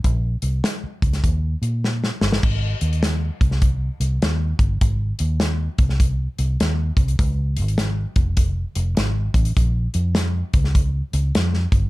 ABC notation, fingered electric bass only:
X:1
M:4/4
L:1/8
Q:"Swing" 1/4=101
K:Ab
V:1 name="Fingered electric bass" clef=bass
B,,, C,, z D,, E,, B,,2 G,,, | A,,, E,,2 C,,2 C,, E,, G,,, | A,,, E,,2 C,,2 C,, E,, C,, | D,, A,,,2 F,,,2 F,,, A,,, =A,,, |
B,,, F,,2 D,,2 D,, F,, G,,, |]